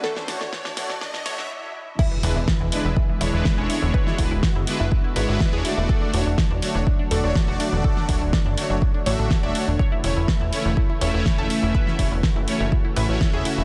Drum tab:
CC |----------------|x---------------|----------------|----------------|
HH |--o---o---o-----|--o---o---o---o-|--o---o---o---o-|--o---o---o---o-|
SD |oooooooooooo----|----o-------o---|-o--o-------o---|----o-------o---|
BD |----------------|o---o---o---o---|o-o-o---o---o---|o---o---o---o---|

CC |----------------|----------------|----------------|
HH |--o---o---o---o-|--o---o---o---o-|--o---o---o---o-|
SD |-o--o-------o---|----o-------o---|-o--o-------o---|
BD |o-o-o---o---o---|o---o---o---o---|o-o-o---o---o---|